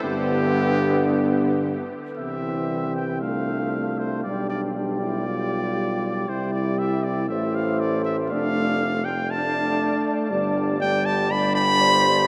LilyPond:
<<
  \new Staff \with { instrumentName = "Trumpet" } { \time 4/4 \key g \mixolydian \tempo 4 = 118 g'2. r4 | e''4. g''8 f''4. c''8 | d''8 d''8 d''2. | c''8 d''8 e''8 d''8 e''8 f''8 d''8 e''8 |
f''4. g''8 a''2 | r4 g''8 a''8 b''8 b''4. | }
  \new Staff \with { instrumentName = "Flugelhorn" } { \time 4/4 \key g \mixolydian b2.~ b8 r8 | c'2 f'2 | g'4 g'4 g'2 | g'2 c''2 |
d''4. r8 d''2 | d''4 d''4 d''4 c''4 | }
  \new Staff \with { instrumentName = "French horn" } { \time 4/4 \key g \mixolydian b2.~ b8 r8 | g2 d'2 | d'4 d'8 e'8 f'2 | e'2 e'2 |
d'4. r8 d'2 | d'4 d'4 d'2 | }
  \new Staff \with { instrumentName = "Trombone" } { \clef bass \time 4/4 \key g \mixolydian d2.~ d8 r8 | e2 a2 | g4 g4 g2 | g2 a2 |
a4. r8 a2 | g4 g4 g2 | }
  \new Staff \with { instrumentName = "Tuba" } { \clef bass \time 4/4 \key g \mixolydian g,2.~ g,8 r8 | c,1 | b,,1 | c,2 a,,2 |
f,,2.~ f,,8 r8 | g,,1 | }
>>